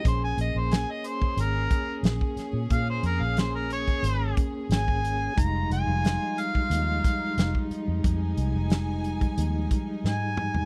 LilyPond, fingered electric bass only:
\new Staff \with { instrumentName = "Fingered electric bass" } { \clef bass \time 4/4 \key f \minor \tempo 4 = 90 bes,,8 bes,,16 bes,,8 r8. aes,,8 r8 bes,,16 r8 bes,16 | bes,8 f,16 bes,,4~ bes,,16 aes,,8 r8 aes,,4 | f,,8 f,,16 f,,8 r8. ees,8 r8 f,,16 r8 f,16 | f,8 c,16 f,,4~ f,,16 ees,8 r8 aes,4 | }